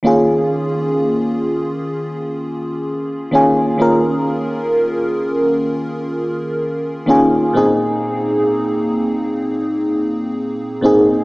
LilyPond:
\new Staff \with { instrumentName = "FM electric piano" } { \time 4/4 \key bes \dorian \tempo 4 = 64 <ees bes des' f' aes'>4. r2 <ees bes des' f' aes'>8 | <ees bes des' f' bes'>4. r2 <ees bes des' f' aes'>8 | <bes, bes c' ees' aes'>4. r2 <bes, bes c' ees' aes'>8 | }